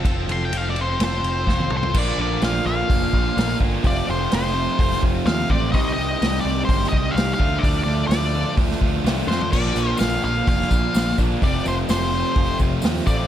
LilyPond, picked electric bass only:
\new Staff \with { instrumentName = "Picked electric bass" } { \clef bass \time 4/4 \key f \mixolydian \tempo 4 = 127 f,,8 f,,8 f,,4 f,,8 f,,8 f,,8 c,8 | bes,,8 bes,,8 bes,,8 bes,,8 f,,8 bes,,8 bes,,8 g,,8 | f,,8 f,,8 f,,4 f,,8 f,,8 ees,8 a,,8 | c,8 c,8 c,8 c,8 g,,8 c,8 c,8 d,8 |
d,8 d,8 d,4 d,8 d,8 c,8 f,8 | bes,,8 bes,,8 bes,,8 bes,,8 f,,8 bes,,8 bes,,8 bes,,8 | f,,8 f,,8 f,,4 f,,8 f,,8 ees,8 a,,8 | }